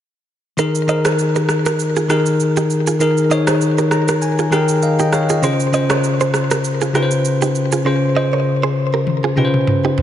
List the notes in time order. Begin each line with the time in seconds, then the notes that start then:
0.57 D#3 D#4 G#4 A#4, shaker
0.75 shaker
0.87 D#3 D#4 G#4 A#4 C5 D#5, shaker
1.05 G#4 C5, cross-stick, shaker
1.19 shaker
1.36 G4 A#4, shaker
1.49 cross-stick, shaker
1.66 G4 A#4, cross-stick, shaker
1.79 shaker
1.96 F4 G#4, shaker
2.09 D#3 D#4 G4 G#4 A#4, cross-stick, shaker
2.26 shaker
2.40 shaker
2.57 D#4 G4, shaker
2.70 shaker
2.87 F4 G#4, shaker
2.99 D#3 D#4 G#4 A#4, shaker
3.17 shaker
3.30 D#3 D#4 G#4 C5 C#5 D#5, shaker
3.47 G#4 C5, cross-stick, shaker
3.61 shaker
3.78 G4 A#4, shaker
3.91 A#5, cross-stick, shaker
4.08 G4 A#4, cross-stick, shaker
4.22 G#5, shaker
4.39 F4 G#4, shaker
4.51 D#3 D#4 G4 G#4 A#4 G5, cross-stick, shaker
4.68 shaker
4.82 D#5 F5, shaker
4.99 D#4 G4 D#5 G5, shaker
5.13 C#5 F5, cross-stick, shaker
5.29 F4 G#4 D#5, shaker
5.42 C#3 C#4 F4 G#4 C5, shaker
5.60 shaker
5.72 C#3 C#4 F4 C5 D#5, shaker
5.90 A#4 C#5, cross-stick, shaker
6.04 shaker
6.21 G#4 C5, shaker
6.34 cross-stick, shaker
6.51 G4 A#4, cross-stick, shaker
6.64 shaker
6.81 F4 G#4, shaker
6.93 C#3 C#4 D#4 F4 G4 B4, cross-stick, shaker
7.02 C5
7.11 shaker
7.25 shaker
7.42 D#4 G4, shaker
7.55 shaker
7.72 F4 G#4, shaker
7.84 C#3 C#4 F4 G#4 C5
8.15 C#3 C#4 F4 C5 D#5
8.33 A#4 C#5
8.63 G#4 C5
8.94 G4 A#4
9.07 high tom
9.24 F4 G#4
9.36 C#3 C#4 D#4 F4 G4 B4, mid tom
9.45 C5
9.54 mid tom
9.67 mid tom
9.85 D#4 G4
9.98 floor tom